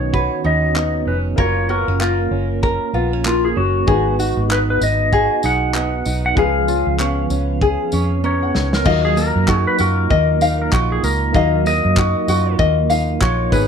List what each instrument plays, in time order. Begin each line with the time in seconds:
Already playing: fingered electric bass B1, clean electric guitar D#3 B3 C#4 F#4, upright piano B3 D#4 F#4 C#5, ukulele D#4 F#4 B4 D#5, electric slide guitar C#5
0.13 clean electric guitar F#4, ukulele B4, kick
0.44 fingered electric bass D#2, clean electric guitar C#4, ukulele D#4, electric slide guitar D#5
0.76 clean electric guitar B3, ukulele D#4, clap
1.06 fingered electric bass F1, clean electric guitar C#4, electric slide guitar B4
1.36 fingered electric bass F#1, upright piano A#3 F#4 F5, clean electric guitar F4, ukulele A#4, kick
1.40 electric slide guitar C#5, upright piano C#5
1.69 clean electric guitar B3, ukulele F#4, electric slide guitar A#4
1.88 fingered electric bass F#1, clean electric guitar C#4
2.00 clean electric guitar A#3, ukulele F4, electric slide guitar A#4, clap
2.31 fingered electric bass F#1, clean electric guitar C#4
2.63 ukulele A#4, kick
2.93 fingered electric bass A#1, clean electric guitar B3, ukulele F4
3.13 clean electric guitar C#4
3.25 clean electric guitar A#3, electric slide guitar F4, clap
3.45 electric slide guitar G#4
3.56 fingered electric bass F#1, clean electric guitar C#4, electric slide guitar F#4
3.86 fingered electric bass G#1, upright piano G#3 D#4 F#4 B4, clean electric guitar B3 F#4, ukulele G#4, kick
4.19 clean electric guitar D#4, ukulele F#4, tambourine
4.37 fingered electric bass G#1
4.50 clean electric guitar B3, ukulele D#4, electric slide guitar B4, clap
4.70 electric slide guitar B4
4.81 fingered electric bass G#1, clean electric guitar D#4, electric slide guitar D#5, tambourine
5.12 clean electric guitar F#4, ukulele G#4, kick
5.43 fingered electric bass B1, ukulele D#4, clean electric guitar D#4, electric slide guitar F#5, tambourine
5.74 clean electric guitar B3, ukulele D#4, clap
6.06 fingered electric bass B1, clean electric guitar D#4, tambourine
6.26 electric slide guitar F#5
6.35 fingered electric bass C#2, clean electric guitar F3 G#4, upright piano F3 G#3 C#4 B4, ukulele G#4, electric slide guitar F5, kick
6.68 clean electric guitar C#4, ukulele F4, tambourine
6.87 fingered electric bass C#2
6.99 clean electric guitar B3, ukulele C#4, clap
7.30 fingered electric bass C#2, clean electric guitar C#4, tambourine
7.61 clean electric guitar G#4, ukulele G#4, kick
7.92 fingered electric bass F2, ukulele C#4, clean electric guitar C#4, tambourine
8.24 clean electric guitar B3, ukulele C#4, electric slide guitar C#5, upright piano A#5
8.42 upright piano F#5
8.54 fingered electric bass C#2, clean electric guitar C#4, snare
8.73 electric slide guitar A#4, snare
8.84 fingered electric bass D#2, clean electric guitar F#3, upright piano A#3 D#4 F4 F#4 D#5, ukulele D#5 F5, kick, crash
9.05 electric slide guitar G#4
9.16 clean electric guitar A#3, ukulele A#4, electric slide guitar A#4, tambourine
9.36 fingered electric bass F#2
9.48 clean electric guitar D#4, ukulele F#4, kick, clap
9.67 electric slide guitar B4
9.78 fingered electric bass F#2, clean electric guitar F4, ukulele F#4, electric slide guitar A#4, tambourine
10.10 fingered electric bass D#2, clean electric guitar A#3, ukulele D#5, kick
10.41 clean electric guitar D#4, ukulele F5, tambourine
10.62 electric slide guitar A#4
10.72 fingered electric bass A#1, clean electric guitar F4, ukulele F#4, kick, clap
10.92 electric slide guitar G#4
11.03 fingered electric bass C#2, clean electric guitar A#3, ukulele A#4, electric slide guitar A#4, tambourine
11.32 fingered electric bass D#2, clean electric guitar F#3, upright piano A#3 D#4 F4 F#4, ukulele D#5 F5, kick
11.37 upright piano D#5
11.66 clean electric guitar A#3, ukulele A#4, electric slide guitar D#5, tambourine
11.85 fingered electric bass F#2
11.97 clean electric guitar D#4, ukulele F#4, kick, clap
12.28 fingered electric bass F#2, clean electric guitar F4, ukulele F#4, tambourine
12.59 fingered electric bass D#2, clean electric guitar A#3, ukulele D#5, kick
12.90 clean electric guitar D#4, ukulele F5, tambourine
13.21 fingered electric bass A#1, clean electric guitar F4, ukulele F#4, electric slide guitar C#5, kick, clap
13.50 fingered electric bass G#1, clean electric guitar D#3, upright piano B3 D#4, ukulele B4, kick, tambourine
13.54 upright piano G#4